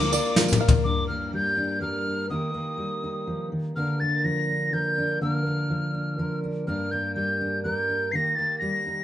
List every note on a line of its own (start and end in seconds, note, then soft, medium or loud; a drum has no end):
0.00 0.15 D2 medium
0.00 0.12 F3 medium
0.00 0.12 A#3 medium
0.00 0.12 D4 medium
0.00 0.35 F4 medium
0.00 0.61 F4 loud
0.00 0.10 A#4 medium
0.00 0.61 A#4 medium
0.00 0.82 A#4 medium
0.00 0.82 D5 medium
0.00 0.12 F5 medium
0.00 0.82 F5 medium
0.00 0.36 D6 loud
0.00 0.82 D6 medium
0.00 tambourine soft
0.12 0.35 A#3 soft
0.12 0.36 D4 soft
0.12 0.36 A#4 medium
0.12 0.85 D5 medium
0.12 tambourine loud
0.35 0.60 F3 medium
0.35 0.61 A#3 medium
0.35 0.60 D4 medium
0.35 0.85 F4 medium
0.35 0.58 A#4 medium
0.35 snare medium
0.48 tambourine medium
0.53 mid tom medium
0.60 0.86 A#3 medium
0.60 0.85 D4 medium
0.60 0.84 A#4 medium
0.60 0.85 F5 medium
0.68 floor tom loud
0.84 2.30 G2 soft
0.84 1.09 A#3 soft
0.84 1.56 D4 soft
0.84 1.81 A#4 soft
0.84 1.07 D6 medium
1.08 2.30 A#3 soft
1.08 1.31 F6 medium
1.33 1.79 G3 soft
1.33 1.79 G6 medium
1.57 2.05 D4 soft
1.81 2.27 G3 soft
1.81 2.32 A#4 soft
1.81 2.27 F6 medium
2.07 2.31 D4 soft
2.30 3.51 D#3 medium
2.30 2.54 A#3 soft
2.30 3.02 D#4 soft
2.30 3.77 G4 soft
2.30 3.48 D#6 medium
2.54 3.76 A#3 soft
2.77 3.27 G3 soft
3.04 3.73 D#4 soft
3.27 3.52 F3 soft
3.52 3.76 D#3 soft
3.76 5.19 D3 medium
3.76 4.01 A#3 soft
3.76 4.49 D4 soft
3.76 4.73 A#4 soft
3.76 4.01 F6 medium
4.00 5.21 A#3 soft
4.00 4.26 A6 medium
4.24 4.72 F3 soft
4.24 4.75 A#6 medium
4.49 4.98 D4 soft
4.73 5.68 F3 soft
4.73 5.23 A#4 soft
4.73 5.21 G6 medium
4.98 5.22 D4 soft
5.21 6.64 D3 soft
5.21 5.46 A#3 soft
5.21 5.94 D4 soft
5.21 6.19 A#4 soft
5.21 6.39 F6 medium
5.46 6.67 A#3 soft
5.70 6.17 F3 soft
5.94 6.42 D4 soft
6.18 6.67 F3 soft
6.18 6.68 A#4 soft
6.44 6.67 D4 soft
6.67 8.13 G2 medium
6.67 6.92 A#3 soft
6.67 7.40 D4 soft
6.67 7.65 A#4 soft
6.67 6.93 F6 medium
6.91 8.13 A#3 soft
6.91 7.14 G6 medium
7.15 7.63 G3 soft
7.15 7.60 G6 medium
7.41 7.89 D4 soft
7.64 8.10 G3 soft
7.64 8.15 A#4 medium
7.64 8.13 G6 medium
7.90 8.13 D4 soft
8.12 9.04 D#3 soft
8.12 8.38 A#3 soft
8.12 8.85 D#4 soft
8.12 9.04 G4 medium
8.12 8.37 A#6 medium
8.12 8.16 C7 medium
8.35 9.04 A#3 soft
8.35 8.58 A6 medium
8.59 9.04 G3 soft
8.59 9.04 A#6 medium
8.86 9.04 D#4 soft